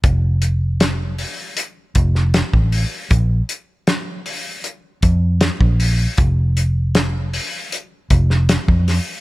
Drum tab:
HH |x-x-x-o-x-x-x-o-|x-x-x-o-x-x-x-o-|x-x-x-o-x-x-x-o-|
SD |----o------oo---|----o-------o---|----o------oo-o-|
BD |o---------o--o--|o---------o--o--|o---------o--o--|